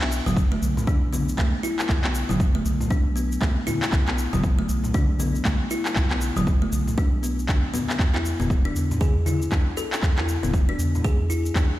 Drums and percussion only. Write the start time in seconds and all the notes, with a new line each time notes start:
0.01 clap
0.12 shaker
0.26 high conga, low conga, shaker
0.37 kick, shaker
0.63 high conga, shaker
0.77 low conga, shaker
0.87 kick, high conga, shaker
1.13 high conga, shaker
1.29 shaker
1.38 kick, clap, shaker
1.64 shaker
1.79 clap, shaker
1.89 kick, clap, high conga, shaker
2.04 clap
2.15 shaker
2.29 high conga, low conga, shaker
2.40 kick, shaker
2.66 high conga, shaker
2.81 low conga, shaker
2.91 kick, shaker
3.17 shaker
3.32 shaker
3.41 kick, clap, high conga, shaker
3.67 high conga, low conga, shaker
3.82 clap, shaker
3.92 kick, clap, shaker
4.08 clap
4.18 shaker
4.33 high conga, low conga, shaker
4.44 kick, shaker
4.69 high conga, shaker
4.84 low conga, shaker
4.94 kick, high conga, shaker
5.19 high conga, shaker
5.35 shaker
5.45 kick, clap, shaker
5.71 shaker
5.86 clap, shaker
5.95 kick, clap, high conga, shaker
6.11 clap
6.21 shaker
6.36 high conga, low conga, shaker
6.47 kick, shaker
6.73 high conga, shaker
6.87 low conga, shaker
6.98 kick, shaker
7.24 shaker
7.39 shaker
7.49 kick, clap, high conga, shaker
7.74 high conga, low conga, shaker
7.90 clap, shaker
7.99 kick, clap, shaker
8.15 clap
8.25 shaker
8.40 high conga, low conga, shaker
8.50 kick, shaker
8.76 high conga, shaker
8.91 low conga, shaker
9.01 kick, high conga, shaker
9.26 high conga, shaker
9.42 shaker
9.52 kick, clap, shaker
9.78 shaker
9.93 clap, shaker
10.03 kick, clap, high conga, shaker
10.18 clap
10.29 shaker
10.43 high conga, low conga, shaker
10.54 kick, shaker
10.79 high conga, shaker
10.95 low conga, shaker
11.05 kick, shaker
11.30 shaker
11.46 shaker
11.55 kick, clap, high conga, shaker